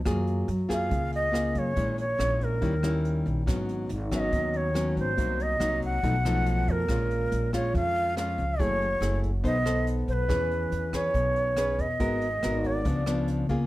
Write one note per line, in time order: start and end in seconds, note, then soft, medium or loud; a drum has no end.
0.05 0.45 F#2 medium
0.05 0.89 F#3 soft
0.05 0.48 A#3 soft
0.05 0.48 F4 soft
0.05 0.48 G#4 medium
0.05 kick medium
0.05 cross-stick medium
0.05 closed hi-hat soft
0.27 closed hi-hat soft
0.48 0.88 F#2 medium
0.48 closed hi-hat soft
0.69 1.30 A#3 medium
0.69 1.30 F4 medium
0.69 1.30 G#4 medium
0.69 kick soft
0.69 cross-stick medium
0.69 closed hi-hat soft
0.73 1.11 F5 medium
0.89 1.51 C#2 medium
0.89 1.73 C#3 medium
0.89 kick medium
0.89 closed hi-hat soft
1.12 1.60 D#5 medium
1.12 closed hi-hat soft
1.32 1.72 A#3 medium
1.32 1.72 F4 soft
1.32 1.73 G#4 medium
1.32 cross-stick medium
1.32 closed hi-hat soft
1.55 1.75 F#2 medium
1.55 1.99 C#5 medium
1.55 kick soft
1.55 closed hi-hat soft
1.76 2.16 A#1 medium
1.76 2.60 A#2 soft
1.76 2.04 G#3 medium
1.76 2.04 C#4 soft
1.76 2.04 E4 soft
1.76 kick medium
1.76 closed hi-hat soft
1.98 2.45 C#5 medium
1.98 closed hi-hat soft
2.19 2.59 A#1 medium
2.19 2.60 G#3 medium
2.19 2.60 C#4 soft
2.19 2.60 E4 soft
2.19 cross-stick soft
2.19 closed hi-hat soft
2.41 3.27 A#4 medium
2.41 kick soft
2.41 closed hi-hat soft
2.61 3.22 D#2 medium
2.61 3.45 D#3 soft
2.61 2.74 G3 medium
2.61 2.74 C#4 medium
2.61 2.74 E4 medium
2.61 kick medium
2.61 closed hi-hat soft
2.83 3.44 G3 medium
2.83 3.44 C#4 medium
2.83 3.44 E4 medium
2.83 cross-stick soft
2.83 closed hi-hat soft
3.05 closed hi-hat soft
3.26 3.45 A#1 medium
3.26 kick soft
3.26 closed hi-hat soft
3.46 3.87 G#1 medium
3.46 4.30 G#2 soft
3.46 3.89 F#3 medium
3.46 3.90 B3 soft
3.46 3.89 C#4 medium
3.46 kick medium
3.46 cross-stick medium
3.46 closed hi-hat soft
3.69 closed hi-hat soft
3.89 4.29 G#1 medium
3.89 closed hi-hat soft
4.11 4.72 F#3 medium
4.11 4.72 B3 medium
4.11 4.72 C#4 medium
4.11 4.20 E5 medium
4.11 kick soft
4.11 cross-stick soft
4.11 closed hi-hat soft
4.19 4.58 D#5 medium
4.32 4.92 D#2 medium
4.32 5.15 D#3 soft
4.32 kick soft
4.32 closed hi-hat soft
4.54 4.98 C#5 medium
4.54 closed hi-hat soft
4.74 5.14 F#3 medium
4.74 5.14 B3 soft
4.74 5.14 C#4 medium
4.74 cross-stick medium
4.74 closed hi-hat soft
4.97 5.16 G#1 medium
4.97 5.44 C5 medium
4.97 kick soft
4.97 closed hi-hat soft
5.17 5.57 C2 medium
5.17 6.00 C3 soft
5.17 5.57 F#3 soft
5.17 5.57 A#3 soft
5.17 5.57 D#4 medium
5.17 kick medium
5.17 closed hi-hat soft
5.40 5.83 D#5 medium
5.40 closed hi-hat soft
5.60 6.00 C2 medium
5.60 6.01 F#3 medium
5.60 6.01 A#3 medium
5.60 6.02 D#4 medium
5.60 cross-stick medium
5.60 closed hi-hat soft
5.82 6.72 F#5 medium
5.82 kick soft
5.82 closed hi-hat soft
6.03 6.63 B1 medium
6.03 6.87 B2 medium
6.03 6.16 F3 medium
6.03 6.16 A3 medium
6.03 6.16 D#4 medium
6.03 kick medium
6.03 closed hi-hat soft
6.25 6.86 F3 medium
6.25 6.86 A3 medium
6.25 6.86 D#4 medium
6.25 cross-stick soft
6.25 closed hi-hat soft
6.46 closed hi-hat soft
6.68 6.87 F2 medium
6.68 7.54 A#4 medium
6.68 kick soft
6.68 closed hi-hat soft
6.89 7.28 A#1 medium
6.89 7.72 A#2 soft
6.89 7.49 G#3 medium
6.89 7.50 C#4 soft
6.89 7.50 F4 medium
6.89 kick medium
6.89 cross-stick medium
6.89 closed hi-hat soft
7.11 closed hi-hat soft
7.31 7.71 A#1 medium
7.31 closed hi-hat soft
7.53 8.13 G#3 soft
7.53 8.13 C#4 medium
7.53 8.14 F4 medium
7.53 7.74 C#5 medium
7.53 kick soft
7.53 cross-stick soft
7.53 closed hi-hat soft
7.73 8.34 F2 medium
7.73 8.57 F3 soft
7.73 8.15 F5 loud
7.73 kick medium
7.73 closed hi-hat soft
7.96 closed hi-hat soft
8.16 8.44 G#3 medium
8.16 8.44 C#4 soft
8.16 8.44 F4 medium
8.16 8.62 F5 medium
8.16 cross-stick medium
8.16 closed hi-hat soft
8.38 8.58 C#2 medium
8.38 kick soft
8.38 closed hi-hat soft
8.59 8.99 F#1 medium
8.59 9.42 F#3 soft
8.59 8.87 A3 soft
8.59 8.87 E4 soft
8.59 8.87 G#4 soft
8.59 9.18 C#5 loud
8.59 kick medium
8.59 closed hi-hat soft
8.81 closed hi-hat soft
9.01 9.41 F#1 medium
9.01 9.30 A3 soft
9.01 9.30 E4 medium
9.01 9.30 G#4 medium
9.01 cross-stick soft
9.01 closed hi-hat soft
9.23 kick soft
9.23 closed hi-hat soft
9.44 10.04 B1 medium
9.44 10.27 B3 medium
9.44 9.56 D#4 medium
9.44 9.57 A4 soft
9.44 9.57 C5 medium
9.44 9.85 D#5 loud
9.44 kick soft
9.44 closed hi-hat soft
9.65 10.26 D#4 soft
9.65 10.26 A4 medium
9.65 10.26 C5 medium
9.65 cross-stick soft
9.65 closed hi-hat soft
9.87 closed hi-hat soft
10.08 10.28 B1 medium
10.08 10.14 C5 medium
10.08 kick soft
10.08 closed hi-hat soft
10.13 10.97 B4 medium
10.29 10.69 E2 medium
10.29 11.12 E3 soft
10.29 10.90 C#4 soft
10.29 10.90 G#4 soft
10.29 10.90 B4 medium
10.29 kick medium
10.29 cross-stick medium
10.29 closed hi-hat soft
10.51 closed hi-hat soft
10.72 11.12 E2 medium
10.72 closed hi-hat soft
10.93 11.54 C#4 soft
10.93 11.55 G#4 medium
10.93 11.54 B4 medium
10.93 11.82 C#5 medium
10.93 kick soft
10.93 cross-stick medium
10.93 closed hi-hat soft
11.14 11.74 B1 medium
11.14 11.98 B2 soft
11.14 kick medium
11.14 closed hi-hat soft
11.36 closed hi-hat soft
11.57 11.86 C#4 medium
11.57 11.86 G#4 soft
11.57 11.86 B4 medium
11.57 cross-stick medium
11.57 closed hi-hat soft
11.79 11.99 E2 medium
11.79 12.68 D#5 medium
11.79 kick soft
11.79 closed hi-hat soft
12.00 12.40 G#1 medium
12.00 12.83 G#3 soft
12.00 12.27 B3 soft
12.00 12.28 F#4 soft
12.00 12.28 A#4 medium
12.00 kick medium
12.00 closed hi-hat soft
12.21 closed hi-hat soft
12.43 12.82 G#1 medium
12.43 12.84 B3 soft
12.43 12.84 F#4 medium
12.43 12.84 A#4 medium
12.43 cross-stick soft
12.43 closed hi-hat soft
12.64 13.29 D5 medium
12.64 kick soft
12.64 closed hi-hat soft
12.85 13.45 C#2 medium
12.85 13.67 C#3 medium
12.85 13.03 F3 medium
12.85 13.04 B3 medium
12.85 13.04 D4 medium
12.85 kick medium
12.85 closed hi-hat soft
13.06 13.46 F3 medium
13.06 13.46 B3 medium
13.06 13.46 D4 medium
13.06 cross-stick medium
13.06 closed hi-hat soft
13.28 closed hi-hat soft
13.49 13.67 C#2 medium
13.49 13.67 A#3 medium
13.49 13.67 F4 medium
13.49 13.67 G#4 medium
13.49 kick soft
13.49 closed hi-hat soft